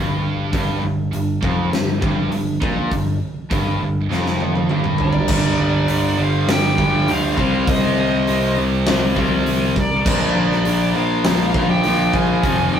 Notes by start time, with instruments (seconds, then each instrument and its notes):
Already playing: picked electric bass G1, overdriven electric guitar G2
0.53 picked electric bass G1, overdriven electric guitar G2, kick, open hi-hat
0.83 picked electric bass G1, overdriven electric guitar G2
1.13 picked electric bass G1, overdriven electric guitar G2, open hi-hat
1.42 picked electric bass F1, overdriven electric guitar F2, kick
1.72 picked electric bass G1, overdriven electric guitar G2, snare, open hi-hat
2.01 picked electric bass G1, overdriven electric guitar G2, kick
2.31 picked electric bass G1, overdriven electric guitar G2, open hi-hat
2.61 picked electric bass A#1, overdriven electric guitar A#2, kick
2.91 picked electric bass G1, overdriven electric guitar G2, kick, open hi-hat
3.50 picked electric bass G1, overdriven electric guitar G2, kick, open hi-hat
3.81 picked electric bass G1, overdriven electric guitar G2
4.10 picked electric bass F1, overdriven electric guitar F2, snare
4.26 snare
4.40 high tom
4.55 high tom
4.69 picked electric bass G1, overdriven electric guitar G2, mid tom
4.84 mid tom
4.98 lead electric guitar A#4 D5, floor tom
5.13 floor tom
5.28 picked electric bass G1, overdriven electric guitar G2 D3, kick, crash
5.32 overdriven electric guitar G3
5.59 picked electric bass G1
5.88 picked electric bass G1, open hi-hat
6.17 picked electric bass G1, distorted electric guitar G2 D3 G3
6.22 lead electric guitar C5 F5
6.47 picked electric bass G1, lead electric guitar G5, snare, open hi-hat
6.52 lead electric guitar D5
6.77 picked electric bass G1, overdriven electric guitar G2 D3 G3, kick
7.07 picked electric bass D2, overdriven electric guitar G2 D3 G3, open hi-hat
7.11 lead electric guitar C5 F5
7.36 picked electric bass C2, overdriven electric guitar C3 G3 C4, kick
7.67 picked electric bass C2, lead electric guitar C5 D#5, kick, open hi-hat
7.98 picked electric bass C2, lead electric guitar C5 D#5
8.26 picked electric bass C2, distorted electric guitar C3 G3 C4, open hi-hat
8.58 picked electric bass C2
8.87 picked electric bass C2, overdriven electric guitar C3 G3 C4, snare, open hi-hat
9.16 picked electric bass C2, overdriven electric guitar C3 G3 C4, kick
9.46 picked electric bass C2, open hi-hat
9.76 picked electric bass C2, lead electric guitar A#4 D5, kick
10.05 picked electric bass A#1, overdriven electric guitar A#2 F3 A#3, kick, crash
10.35 picked electric bass A#1
10.51 snare
10.65 picked electric bass A#1, open hi-hat
10.94 picked electric bass A#1, distorted electric guitar A#2 F3 A#3, lead electric guitar A#4 F5
11.25 picked electric bass A#1, snare, open hi-hat
11.54 picked electric bass A#1, overdriven electric guitar A#2 F3 A#3, kick
11.69 lead electric guitar D5 G5
11.83 picked electric bass A#1, overdriven electric guitar A#2 F3 A#3, open hi-hat
12.14 picked electric bass A#1, lead electric guitar F5 G#5, kick
12.42 picked electric bass F1, overdriven electric guitar F2 C3 F3, kick, open hi-hat
12.72 picked electric bass F1, lead electric guitar D5 G5